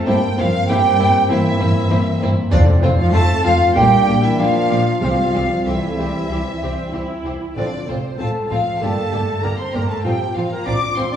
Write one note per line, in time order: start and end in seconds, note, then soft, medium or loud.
0.00 2.48 C4 medium
0.06 0.15 G2 medium
0.06 0.15 G3 medium
0.06 2.51 A#3 medium
0.06 0.15 A#3 medium
0.06 0.14 C4 medium
0.06 0.14 E4 medium
0.06 0.21 G4 medium
0.06 0.37 G5 medium
0.37 0.46 G2 medium
0.37 0.68 F3 medium
0.37 0.45 A#3 medium
0.37 0.46 C4 medium
0.37 0.47 E4 medium
0.37 0.51 F4 medium
0.37 0.67 F5 medium
0.37 0.68 F5 loud
0.67 0.77 G2 medium
0.67 1.28 G3 medium
0.67 0.77 A#3 medium
0.67 0.77 C4 medium
0.67 0.78 C4 medium
0.67 0.78 E4 medium
0.67 1.31 G4 medium
0.67 1.29 G5 medium
0.67 1.29 G5 loud
0.99 1.08 G2 medium
0.99 1.07 A#3 medium
0.99 1.07 C4 medium
0.99 1.08 E4 medium
1.28 1.38 G2 medium
1.28 2.19 E3 medium
1.28 1.38 A#3 medium
1.28 1.38 C4 medium
1.28 2.21 E4 medium
1.28 1.38 E4 medium
1.28 2.19 E5 medium
1.28 2.20 E5 loud
1.59 1.69 G2 medium
1.59 1.67 A#3 medium
1.59 1.67 C4 medium
1.59 1.68 C4 medium
1.59 1.68 E4 medium
1.90 1.99 G2 medium
1.90 1.98 A#3 medium
1.90 1.98 C4 medium
1.90 1.98 E4 medium
2.21 2.30 G2 medium
2.21 2.29 A#3 medium
2.21 2.29 C4 medium
2.21 2.30 C4 medium
2.21 2.30 E4 medium
2.51 3.40 F2 medium
2.51 2.60 F2 medium
2.51 2.80 D3 medium
2.51 2.60 A3 medium
2.51 3.73 A3 medium
2.51 2.60 C4 medium
2.51 3.73 C4 medium
2.51 2.61 C4 medium
2.51 2.66 D4 medium
2.51 2.61 F4 medium
2.51 2.80 D5 medium
2.51 2.60 D5 loud
2.82 2.91 F2 medium
2.82 2.98 C3 medium
2.82 2.90 A3 medium
2.82 2.90 C4 medium
2.82 2.89 C4 medium
2.82 2.91 C4 medium
2.82 2.91 F4 medium
2.82 2.97 C5 medium
2.82 2.89 C5 medium
2.97 3.13 F3 loud
2.97 3.15 F4 medium
2.97 3.13 F5 medium
2.97 3.14 F5 medium
3.13 3.22 F2 medium
3.13 3.44 A3 medium
3.13 3.22 A3 medium
3.13 3.21 C4 medium
3.13 3.22 C4 medium
3.13 3.21 F4 medium
3.13 3.43 A4 medium
3.13 3.44 A5 loud
3.44 3.53 F2 medium
3.44 3.52 F3 medium
3.44 3.53 A3 medium
3.44 3.52 C4 medium
3.44 3.77 F4 medium
3.44 3.52 F4 medium
3.44 3.75 F5 loud
3.44 3.76 F5 loud
3.75 3.84 A#1 medium
3.75 4.22 G3 medium
3.75 4.85 A#3 medium
3.75 3.84 A#3 medium
3.75 4.85 D4 medium
3.75 3.84 D4 medium
3.75 4.22 G4 loud
3.75 3.84 G4 medium
3.75 4.23 G5 loud
3.75 4.22 G5 loud
4.08 4.16 A#1 medium
4.08 4.16 A#3 medium
4.08 4.16 D4 medium
4.08 4.16 G4 medium
4.22 4.38 E3 medium
4.22 4.41 E4 medium
4.22 4.38 E5 medium
4.22 4.39 E5 medium
4.38 4.47 A#1 medium
4.38 5.00 F3 medium
4.38 4.47 A#3 medium
4.38 4.48 D4 medium
4.38 5.00 F4 medium
4.38 4.47 G4 medium
4.38 4.99 F5 medium
4.38 5.00 F5 loud
4.70 4.78 A#1 medium
4.70 4.78 A#3 medium
4.70 4.78 D4 medium
4.70 4.78 G4 medium
5.01 5.10 C2 medium
5.01 5.93 C3 medium
5.01 5.64 F3 medium
5.01 5.09 G3 medium
5.01 7.21 G3 medium
5.01 5.09 C4 medium
5.01 7.21 C4 medium
5.01 5.11 C4 medium
5.01 5.64 F4 medium
5.01 5.11 G4 medium
5.01 5.64 F5 medium
5.33 5.42 C2 medium
5.33 5.41 G3 medium
5.33 5.41 C4 medium
5.33 5.43 C4 soft
5.33 5.42 G4 soft
5.66 5.74 C2 medium
5.66 7.24 E3 medium
5.66 5.96 A3 medium
5.66 5.75 C4 medium
5.66 7.22 E4 medium
5.66 5.75 G4 soft
5.66 7.24 E5 medium
5.66 7.21 E5 medium
5.98 6.06 C2 soft
5.98 6.29 G3 medium
5.98 6.07 C4 medium
5.98 6.08 G4 medium
6.30 6.38 C2 medium
6.30 6.39 C4 soft
6.30 6.38 E4 medium
6.30 6.39 G4 soft
6.61 6.69 C2 soft
6.61 6.92 C4 medium
6.61 6.71 C4 soft
6.61 6.71 G4 soft
6.92 7.00 C2 medium
6.92 7.01 C4 soft
6.92 7.56 E4 medium
6.92 7.01 G4 soft
7.24 7.32 C2 medium
7.24 7.34 C4 soft
7.24 7.34 G4 soft
7.55 7.64 A1 medium
7.55 7.85 D3 medium
7.55 7.79 F3 medium
7.55 7.64 A3 medium
7.55 7.64 C4 medium
7.55 7.79 C4 medium
7.55 7.66 C4 medium
7.55 7.70 D4 medium
7.55 7.66 F4 medium
7.55 7.86 D5 medium
7.55 7.64 D5 medium
7.87 7.96 A1 medium
7.87 8.18 C3 soft
7.87 7.95 A3 soft
7.87 7.95 C4 soft
7.87 8.18 C4 medium
7.87 7.97 C4 soft
7.87 7.97 F4 soft
7.87 8.19 C5 medium
7.87 8.18 C5 medium
8.18 8.28 A1 medium
8.18 8.49 A3 medium
8.18 8.26 A3 soft
8.18 8.26 C4 medium
8.18 8.28 C4 soft
8.18 8.28 F4 soft
8.18 8.53 A4 medium
8.18 8.27 A5 medium
8.18 8.49 A5 medium
8.49 8.58 A1 medium
8.49 8.80 F3 medium
8.49 8.58 A3 soft
8.49 8.58 C4 medium
8.49 8.59 C4 soft
8.49 8.59 F4 soft
8.49 8.81 F4 medium
8.49 8.80 F5 medium
8.49 8.81 F5 medium
8.80 8.89 G1 medium
8.80 8.88 D3 medium
8.80 9.03 G3 medium
8.80 9.41 A3 medium
8.80 8.88 A#3 soft
8.80 9.03 A#3 medium
8.80 8.91 D4 soft
8.80 8.91 G4 soft
8.80 9.42 A4 medium
8.80 9.43 A5 medium
8.80 9.42 A5 medium
9.12 9.21 G1 medium
9.12 9.20 D3 soft
9.12 9.20 A#3 soft
9.12 9.21 D4 soft
9.12 9.21 G4 soft
9.42 9.52 G1 medium
9.42 9.50 D3 soft
9.42 9.51 A#3 soft
9.42 9.58 A#3 medium
9.42 9.51 D4 soft
9.42 9.51 G4 soft
9.42 9.51 A#4 medium
9.42 9.58 A#5 medium
9.42 9.50 A#5 medium
9.58 9.74 C4 medium
9.58 9.77 C5 medium
9.58 9.64 C6 medium
9.58 9.74 C6 medium
9.73 9.82 G1 medium
9.73 9.82 D3 soft
9.73 9.89 A#3 medium
9.73 9.82 A#3 soft
9.73 9.82 D4 soft
9.73 9.82 G4 soft
9.73 9.90 A#4 medium
9.73 9.88 A#5 medium
9.88 9.95 A3 medium
9.88 10.07 A4 medium
9.88 10.04 A5 medium
10.03 10.13 A1 medium
10.03 10.13 F3 medium
10.03 10.26 F3 medium
10.03 10.13 G3 medium
10.03 10.12 C4 medium
10.03 10.26 C4 medium
10.03 10.13 C4 medium
10.03 10.12 F4 medium
10.03 10.36 G4 medium
10.03 10.34 G5 medium
10.03 10.36 G5 medium
10.35 10.44 A1 medium
10.35 10.50 F3 medium
10.35 10.44 F3 soft
10.35 10.44 C4 soft
10.35 10.44 F4 soft
10.35 10.43 F4 soft
10.35 10.50 F5 medium
10.35 10.51 F5 medium
10.51 10.66 A#3 medium
10.51 10.59 A#4 medium
10.51 10.66 A#5 medium
10.66 10.75 A1 medium
10.66 10.75 F3 medium
10.66 10.74 C4 medium
10.66 10.75 C4 soft
10.66 10.74 D4 medium
10.66 10.74 F4 soft
10.66 10.80 D5 medium
10.66 10.97 D6 medium
10.96 11.06 A1 medium
10.96 11.05 F3 soft
10.96 11.02 C4 medium
10.96 11.05 C4 medium
10.96 11.05 C4 soft
10.96 11.04 F4 soft
10.96 11.11 C5 medium
10.96 11.12 C6 medium
10.96 11.11 C6 medium
11.12 11.16 D4 medium
11.12 11.16 D5 medium
11.12 11.16 D6 medium